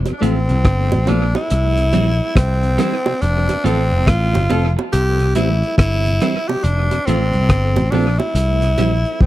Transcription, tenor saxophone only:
0.19 D4
0.23 C4
1.08 D4
1.36 E4
2.36 C4
3.21 D4
3.65 C4
4.07 F4
4.92 G4
5.35 E4
5.78 E4
6.48 G4
6.64 D4
7.06 C4
7.91 D4
8.18 E4
9.22 C4

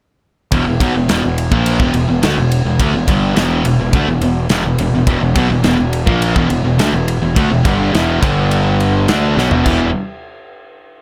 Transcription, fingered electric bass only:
0.53 E1
0.68 E1
0.81 B1
0.97 E1
1.10 E1
1.26 E1
1.52 A#1
1.80 E1
1.95 E1
2.09 E1
2.24 D2
2.38 E1
2.65 E1
2.80 D2
2.94 E1
3.08 G1
3.37 E1
3.66 E1
3.80 E1
3.93 D2
4.08 E1
4.21 E1
4.50 E1
4.65 E1
4.79 E1
4.93 E1
5.07 E1
5.21 E1
5.36 B1
5.51 E1
5.65 E1
5.80 E1
6.07 A#1
6.36 E1
6.51 E1
6.65 E1
6.79 D2
6.93 E1
7.22 E1
7.37 D2
7.51 E1
7.65 G1
7.95 E1
8.23 G1
9.09 D2
9.37 B1
9.52 E1
9.66 E1

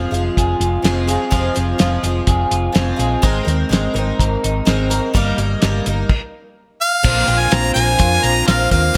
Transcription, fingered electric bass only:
0.12 F1
0.37 F1
0.60 F1
0.84 F1
1.33 F1
1.57 F1
1.81 F1
2.03 F1
2.27 F1
2.51 F1
2.75 F1
2.99 A#1
3.24 G#1
3.47 D#2
3.70 G#1
3.95 G#1
4.19 G#1
4.44 G#1
4.67 G#1
5.15 G1
5.38 G1
5.63 G1
5.86 G1
7.05 A#1
7.28 A#1
7.52 A#1
7.76 A#1
7.99 F2
8.24 A#1
8.48 A#1
8.71 D#2

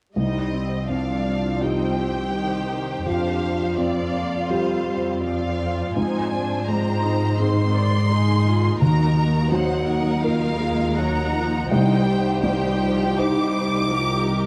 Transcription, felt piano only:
0.16 C2
0.89 C4
1.62 D#4 G4
3.06 F2
3.78 C4
4.50 F4 G4
5.97 G#2
6.68 G#3
7.39 D#4 G#4
8.81 D#2
9.52 F#3
10.23 D#4 A#4
11.71 C2
12.44 G3
13.18 D#4 C5

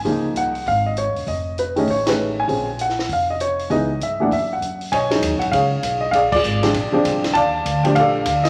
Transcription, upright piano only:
Already playing: G#5
0.05 F3 G#3 A#3 D#4
0.37 F#5
0.68 F5
0.86 D#5
0.98 C#5
1.28 D#5
1.59 B4
1.76 D#3 G#3 A3 C#4 D#5
1.90 C#5
2.07 D#3 G#3 A3 C#4 B4
2.40 G#5
2.48 F3 G#3 C4 C#4
2.81 F#5
3.13 F5
3.30 D#5
3.41 C#5
3.70 E3 G#3 B3 D#4 D#5
4.03 E5
4.20 E3 A3 A#3 D4 F#5
4.33 E5
4.53 F#5
4.92 C#5 D#5 G#5
5.10 F#3 G#3 C#4 D#4
5.39 F#5
5.51 G#4 C#5 F5
6.01 D#5
6.11 G#4 D5 F5
6.32 F4 G#4 D5
6.63 F3 G#3 C4 D4
6.92 F3 G#3 C4 D4
7.34 D5 F5 A5
7.83 F3 G3 A3 D4 G5
7.95 F5
7.99 A4 D5
8.44 D#5

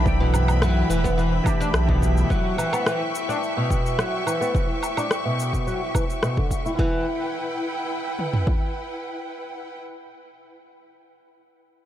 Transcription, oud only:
0.20 B2
0.62 F#3
0.90 E3
1.04 B3
1.18 E3
1.60 D4
1.89 B2
2.30 F#3
2.58 E3
2.73 B3
2.86 E3
3.29 D4
3.57 B2
3.98 F#3
4.27 E3
4.41 B3
4.55 E3
4.97 D4
5.25 B2
5.67 F#3
5.95 E3
6.23 B2
6.38 D3
6.66 E4
6.79 E3

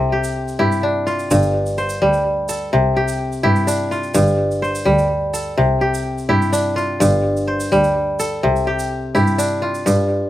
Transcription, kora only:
Already playing: C3 A4 C5
0.12 G4
0.59 E4 G4
0.83 D4
1.07 F4
1.31 G2
1.78 C5
2.02 G3
2.49 A4
2.73 C3
2.96 G4
3.43 E4 G4
3.67 D4
3.91 F4
4.14 G2
4.62 C5
4.85 G3
5.34 A4
5.58 C3
5.81 G4
6.29 E4 G4
6.53 D4
6.76 F4
7.00 G2
7.47 C5
7.72 G3
8.20 A4
8.43 C3
8.67 G4
9.15 E4 G4
9.38 D4
9.62 F4
9.86 G2

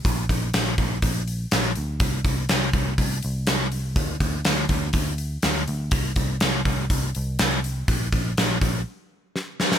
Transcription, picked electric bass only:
0.06 A#1
0.30 A#1
0.55 A#1
0.79 A#1
1.03 A#1
1.53 A#1
1.77 D2
2.01 C2
2.25 C2
2.51 C2
2.74 C2
2.99 C2
3.25 C2
3.49 C2
3.97 D2
4.21 D2
4.46 D2
4.70 D2
4.94 D2
5.44 D2
5.68 D2
5.92 C2
6.17 C2
6.42 C2
6.66 C2
6.90 C2
7.16 C2
7.40 C2
7.89 A#1
8.13 A#1
8.38 A#1
8.62 A#1

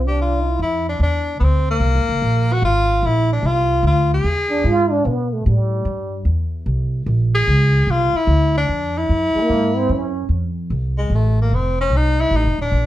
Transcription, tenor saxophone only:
0.08 G4
0.22 F4
0.62 E4
0.89 D4
1.03 D4
1.40 B3 C4
1.71 A#3
2.53 F#4
2.65 F4
3.06 E4
3.33 D4
3.47 F4
3.87 F4
4.14 G#4
7.35 G#4
7.91 F4
8.17 E4
8.58 D4
8.98 E4
10.98 G#3
11.16 A3
11.42 A#3
11.55 C4
11.81 C#4
11.96 D#4
12.21 E4
12.36 D#4
12.62 D4

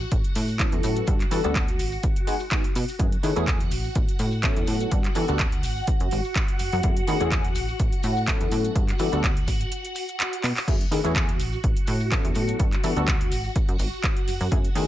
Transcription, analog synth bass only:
0.12 A1
0.36 A2
0.73 E2
0.84 A2
1.07 G2
1.32 E3
1.45 D2
1.80 G#1
2.76 B2
3.00 F#2
3.23 D#3
3.37 E2
3.71 A1
3.96 A1
4.19 A2
4.57 E2
4.68 A2
4.92 G2
5.16 E3
5.29 D2
5.64 G#1
6.01 F#2
6.12 G#1
6.60 F#2
6.73 F#2
6.84 F#2
7.08 D#3
7.21 E2
7.56 A1
7.80 A1
8.04 A2
8.41 E2
8.52 A2
8.76 G2
9.00 E3
9.13 D2
9.48 G#1
10.44 B2
10.68 F#2
10.91 D#3
11.05 E2
11.40 A1
11.64 A1
11.88 A2
12.25 E2
12.36 A2
12.60 G2
12.84 E3
12.96 D2
13.32 G#1
13.69 F#2
13.80 G#1
14.28 F#2
14.41 F#2
14.52 F#2
14.75 D#3

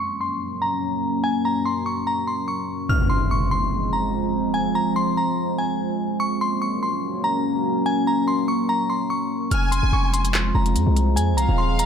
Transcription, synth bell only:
0.00 C#6
0.21 C6
0.62 A#5
1.24 G#5
1.45 A#5
1.66 C6
1.86 C#6
2.07 A#5
2.27 C6
2.48 C#6
2.89 F6
3.10 C6
3.31 C#6
3.51 C6
3.93 A#5
4.54 G#5
4.75 A#5
4.96 C6
5.17 A#5
5.58 G#5
6.20 C#6
6.41 C6
6.62 C#6
6.83 C6
7.24 A#5
7.86 G#5
8.07 A#5
8.28 C6
8.48 C#6
8.69 A#5
8.90 C6
9.10 C#6
9.52 F6
9.72 C6
9.93 C#6
10.13 C6
10.55 A#5
11.16 G#5
11.37 A#5
11.58 C6
11.79 A#5

